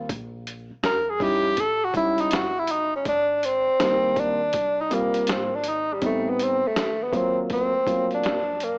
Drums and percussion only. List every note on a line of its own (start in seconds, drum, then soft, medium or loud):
0.09 kick loud
0.09 closed hi-hat loud
0.47 closed hi-hat medium
0.84 snare loud
0.84 closed hi-hat medium
1.20 kick medium
1.20 open hi-hat soft
1.57 kick medium
1.57 closed hi-hat medium
1.94 kick loud
1.94 closed hi-hat medium
2.18 closed hi-hat soft
2.31 snare loud
2.31 closed hi-hat loud
2.67 closed hi-hat medium
3.05 kick loud
3.05 closed hi-hat loud
3.43 closed hi-hat medium
3.80 snare loud
3.80 closed hi-hat loud
4.16 kick medium
4.16 closed hi-hat medium
4.53 kick medium
4.53 closed hi-hat medium
4.91 closed hi-hat medium
5.14 closed hi-hat medium
5.27 snare loud
5.27 closed hi-hat loud
5.64 closed hi-hat medium
6.02 kick loud
6.02 closed hi-hat loud
6.39 closed hi-hat medium
6.76 snare loud
6.76 closed hi-hat medium
7.13 kick medium
7.13 closed hi-hat medium
7.50 kick medium
7.50 closed hi-hat medium
7.86 kick loud
7.86 closed hi-hat medium
8.11 closed hi-hat soft
8.23 snare loud
8.23 closed hi-hat loud
8.60 closed hi-hat medium